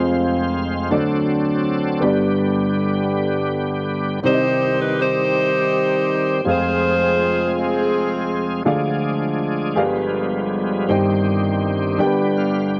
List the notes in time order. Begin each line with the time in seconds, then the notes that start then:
Already playing: F1 F2 G#3 C4 F4 G#4 C5 F5
0.91 D2 D3 F#3 C4 D4 F#4 A4 C5 D5
2.00 G1 G2 D3 G3 B3 D4 G4 B4
2.05 D5
4.23 C2 C3 D#3 G3 C4 D#4 F#4 G4 C5 D5
4.30 G4 D#5
4.81 B4
5.00 D#4 G4 C5
6.44 F1 F2 F3 G#3 C4 F4 G#4 C5
6.48 F4 G#4 C5 F5
7.58 C4 F4 G#4
8.65 D2 D3 F3 G#3 D4 F4 G#4 D5 F5
9.75 G1 G2 F3 G3 G#3 A#3 G4 G#4 B4 D5 F5
9.85 B3
10.89 G1 G2 D#3 G3 C4 D#4 G4 C5 D#5 G5
11.98 G1 G2 D3 G3 B3 D4 G4 A#4 D5 G5
12.05 B4
12.37 F5
12.74 G5